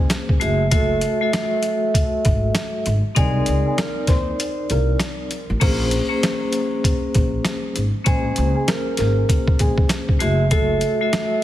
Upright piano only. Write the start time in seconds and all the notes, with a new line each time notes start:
0.72 A3 A4
3.16 G#3 G#4
3.66 G#3 G#4
3.78 A#3 A#4
4.08 C4 C5
4.71 A#3 A#4
5.62 A#3 A#4
8.06 G#3 G#4
8.55 G#3 G#4
8.68 A#3 A#4
8.98 A#3 A#4
9.59 G#3 G#4
10.52 A3 A4